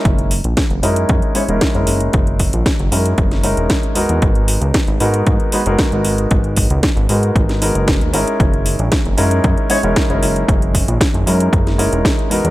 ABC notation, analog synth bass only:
X:1
M:4/4
L:1/16
Q:1/4=115
K:F#mix
V:1 name="Analog synth bass" clef=bass
F,,,3 A,,, z F,,, F,,2 F,, z2 E,,, z F,,, F,,,2 | F,,,3 A,,, z F,,, F,,2 F,,,3 E,,, z2 E,, E,, | G,,,3 C,, z G,,, G,,2 G,, z2 F,,, z G,,, G,,,2 | G,,,3 C,, z G,,, G,,2 G,,,3 F,,,2 D,, G,,, z |
F,,,3 A,,, z F,,, F,,2 F,, z2 E,,, z F,,, F,,,2 | F,,,3 A,,, z F,,, F,,2 F,,,3 E,,, z2 E,, E,, |]